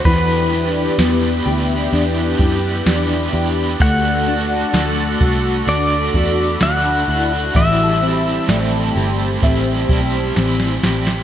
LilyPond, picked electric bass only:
\new Staff \with { instrumentName = "Picked electric bass" } { \clef bass \time 4/4 \key e \minor \tempo 4 = 64 e,4 e,8 d,8 e,8 fis,8 e,8 e,8 | d,4 d,8 c,8 d,8 e,8 d,8 d,8 | a,,4 a,,8 g,,8 a,,8 b,,8 a,,8 a,,8 | }